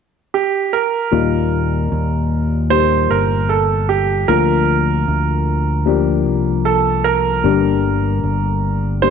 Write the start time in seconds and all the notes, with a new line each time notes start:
0.34 G4
0.73 A#4
1.11 D#2 A#2 G3 A#3 D#4 F4
1.92 D#2
2.70 G3 A#3 D#4 G4 C5
3.10 G1 A#4
3.49 A4
3.89 G4
4.28 D2 D3 F3 A#3 D4 F4 A#4
5.08 D2
5.86 F3 A#3 D4 G4
6.26 C2
6.65 A4
7.04 A#4
7.44 G1 G2 D3 G3 A#3 D4 G4
8.23 G1
9.02 G3 A#3 D4 G4 C5